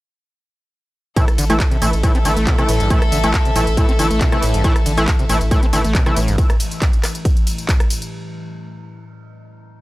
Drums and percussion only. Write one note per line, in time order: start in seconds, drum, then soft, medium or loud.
1.16 kick loud
1.16 closed hi-hat medium
1.16 ride medium
1.16 tambourine soft
1.28 cross-stick medium
1.28 closed hi-hat medium
1.28 tambourine soft
1.38 open hi-hat loud
1.38 ride medium
1.38 tambourine medium
1.50 closed hi-hat medium
1.50 tambourine soft
1.60 kick loud
1.60 clap loud
1.60 closed hi-hat medium
1.60 ride medium
1.60 tambourine soft
1.71 closed hi-hat medium
1.71 tambourine soft
1.82 open hi-hat loud
1.82 ride medium
1.82 tambourine medium
1.93 closed hi-hat medium
1.93 tambourine soft
2.03 kick loud
2.03 closed hi-hat medium
2.03 ride medium
2.03 tambourine soft
2.15 closed hi-hat medium
2.15 tambourine soft
2.25 open hi-hat loud
2.25 ride medium
2.25 tambourine medium
2.37 closed hi-hat medium
2.37 tambourine soft
2.47 kick loud
2.47 clap loud
2.47 closed hi-hat medium
2.47 ride medium
2.47 tambourine soft
2.58 cross-stick medium
2.58 closed hi-hat medium
2.58 tambourine soft
2.69 open hi-hat loud
2.69 ride medium
2.69 tambourine medium
2.80 closed hi-hat medium
2.80 tambourine soft
2.90 kick loud
2.90 closed hi-hat medium
2.90 ride medium
2.90 tambourine soft
3.02 cross-stick medium
3.02 closed hi-hat medium
3.02 tambourine soft
3.12 open hi-hat loud
3.12 ride medium
3.12 tambourine medium
3.24 closed hi-hat medium
3.24 tambourine soft
3.34 kick loud
3.34 clap loud
3.34 closed hi-hat medium
3.34 ride medium
3.34 tambourine soft
3.45 closed hi-hat medium
3.45 tambourine soft
3.56 open hi-hat loud
3.56 ride medium
3.56 tambourine medium
3.67 closed hi-hat medium
3.67 tambourine soft
3.77 kick loud
3.77 closed hi-hat medium
3.77 ride medium
3.77 tambourine soft
3.89 closed hi-hat medium
3.89 tambourine soft
3.99 open hi-hat loud
3.99 ride medium
3.99 tambourine medium
4.11 closed hi-hat medium
4.11 tambourine soft
4.21 kick loud
4.21 clap loud
4.21 closed hi-hat medium
4.21 ride medium
4.21 tambourine soft
4.32 cross-stick medium
4.32 closed hi-hat medium
4.32 tambourine soft
4.43 open hi-hat loud
4.43 ride medium
4.43 tambourine medium
4.54 closed hi-hat medium
4.54 tambourine soft
4.64 kick loud
4.64 closed hi-hat medium
4.64 ride medium
4.64 tambourine soft
4.76 cross-stick medium
4.76 closed hi-hat medium
4.76 tambourine soft
4.86 open hi-hat loud
4.86 ride medium
4.86 tambourine medium
4.97 closed hi-hat medium
4.97 tambourine soft
5.08 kick loud
5.08 clap loud
5.08 closed hi-hat medium
5.08 ride medium
5.08 tambourine soft
5.19 closed hi-hat medium
5.19 tambourine soft
5.29 open hi-hat loud
5.29 ride medium
5.29 tambourine medium
5.41 closed hi-hat medium
5.41 tambourine soft
5.51 kick loud
5.51 closed hi-hat medium
5.51 ride medium
5.51 tambourine soft
5.63 closed hi-hat medium
5.63 tambourine soft
5.73 open hi-hat loud
5.73 ride medium
5.73 tambourine medium
5.84 closed hi-hat medium
5.84 tambourine soft
5.95 kick loud
5.95 clap loud
5.95 closed hi-hat medium
5.95 ride medium
5.95 tambourine soft
6.06 cross-stick medium
6.06 closed hi-hat medium
6.06 tambourine soft
6.17 open hi-hat loud
6.17 ride medium
6.17 tambourine medium
6.28 closed hi-hat medium
6.28 tambourine soft
6.38 kick loud
6.38 closed hi-hat medium
6.38 ride medium
6.38 tambourine soft
6.50 cross-stick medium
6.50 closed hi-hat medium
6.50 tambourine soft
6.60 open hi-hat loud
6.60 ride medium
6.60 tambourine medium
6.71 closed hi-hat medium
6.71 tambourine soft
6.82 kick loud
6.82 clap loud
6.82 closed hi-hat medium
6.82 ride medium
6.82 tambourine soft
6.93 closed hi-hat medium
6.93 tambourine soft
7.04 cross-stick medium
7.04 clap medium
7.04 open hi-hat loud
7.04 ride medium
7.04 tambourine medium
7.15 closed hi-hat medium
7.15 tambourine soft
7.25 kick loud
7.25 closed hi-hat medium
7.25 ride medium
7.25 tambourine soft
7.37 closed hi-hat medium
7.37 tambourine soft
7.47 open hi-hat loud
7.47 ride medium
7.47 tambourine medium
7.58 closed hi-hat medium
7.58 tambourine soft
7.69 kick loud
7.69 clap loud
7.69 closed hi-hat medium
7.69 ride medium
7.69 tambourine soft
7.80 cross-stick medium
7.80 closed hi-hat medium
7.80 tambourine soft
7.90 open hi-hat loud
7.90 ride medium
7.90 tambourine medium
8.02 closed hi-hat medium
8.02 tambourine soft